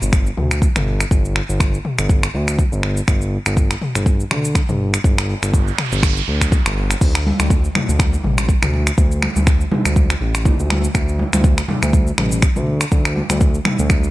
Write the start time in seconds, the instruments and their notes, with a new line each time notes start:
0.02 analog synth bass G1, shaker
0.13 finger snap, kick, shaker
0.27 shaker
0.37 analog synth bass D2, mid tom
0.51 finger snap, shaker
0.62 kick, shaker
0.76 analog synth bass G1, finger snap, mid tom, shaker
1.00 finger snap, shaker
1.11 analog synth bass G1, kick, shaker
1.25 shaker
1.36 finger snap
1.49 analog synth bass G1, shaker
1.60 finger snap, kick, shaker
1.74 shaker
1.85 mid tom
1.99 analog synth bass G1, finger snap, shaker
2.09 kick, shaker
2.23 finger snap, shaker
2.34 analog synth bass D2
2.48 finger snap, shaker
2.59 kick, shaker
2.72 analog synth bass G1, shaker
2.83 finger snap
2.97 shaker
3.08 analog synth bass G1, finger snap, kick, shaker
3.22 shaker
3.46 analog synth bass G1, finger snap, shaker
3.57 kick, shaker
3.71 finger snap, shaker
3.82 mid tom
3.95 analog synth bass G1, finger snap, shaker
4.06 kick, shaker
4.20 shaker
4.31 analog synth bass D2, finger snap, mid tom
4.45 shaker
4.55 finger snap, kick, shaker
4.69 analog synth bass G1, mid tom, shaker
4.94 finger snap, shaker
5.04 analog synth bass G1, kick, noise sweep, shaker
5.18 finger snap, shaker
5.42 analog synth bass G1, finger snap, shaker
5.54 kick, shaker
5.68 shaker
5.78 finger snap, mid tom
5.92 analog synth bass G1, shaker
6.03 finger snap, kick, shaker
6.17 shaker
6.28 analog synth bass D2
6.41 finger snap, kick, shaker
6.52 kick, shaker
6.66 analog synth bass G1, finger snap, shaker
6.91 finger snap, shaker
7.01 analog synth bass D2, kick, crash, muted conga, shaker
7.15 finger snap, shaker
7.27 muted conga, high conga
7.40 analog synth bass D2, finger snap, high conga, shaker
7.50 kick, muted conga, shaker
7.64 shaker
7.75 finger snap, mid tom, high conga, low conga
7.89 analog synth bass D2, muted conga, shaker
7.99 finger snap, kick, high conga, shaker
8.13 muted conga, shaker
8.23 analog synth bass A1, mid tom, high conga
8.38 finger snap, muted conga, high conga, shaker
8.49 kick, shaker
8.62 analog synth bass D2, finger snap, mid tom, shaker
8.74 muted conga
8.87 finger snap, shaker
8.98 analog synth bass D2, kick, muted conga, shaker
9.12 shaker
9.22 finger snap, muted conga, high conga
9.36 analog synth bass D2, high conga, shaker
9.47 finger snap, kick, muted conga, shaker
9.61 shaker
9.71 mid tom, high conga, low conga
9.85 analog synth bass D2, finger snap, muted conga, shaker
9.96 kick, high conga, shaker
10.10 finger snap, muted conga, shaker
10.21 analog synth bass A1
10.34 finger snap, muted conga, shaker
10.45 kick, low conga, shaker
10.59 analog synth bass D2, shaker
10.70 finger snap, muted conga, high conga
10.84 shaker
10.94 analog synth bass D2, finger snap, kick, muted conga, shaker
11.09 shaker
11.19 muted conga, high conga
11.33 analog synth bass D2, finger snap, high conga, shaker
11.44 kick, muted conga, shaker
11.58 finger snap, shaker
11.68 mid tom, high conga, low conga
11.82 analog synth bass D2, finger snap, muted conga, shaker
11.93 kick, high conga, shaker
12.07 muted conga, shaker
12.18 analog synth bass A1, finger snap, mid tom, high conga
12.32 muted conga, high conga, shaker
12.42 finger snap, kick, shaker
12.56 analog synth bass D2, mid tom, shaker
12.67 muted conga
12.81 finger snap, shaker
12.92 analog synth bass D2, kick, muted conga, shaker
13.05 finger snap, shaker
13.16 muted conga, high conga
13.30 analog synth bass D2, finger snap, high conga, shaker
13.41 kick, muted conga, shaker
13.54 shaker
13.65 finger snap, mid tom, high conga, low conga
13.79 analog synth bass D2, muted conga, shaker
13.90 finger snap, kick, high conga, shaker
14.04 muted conga, shaker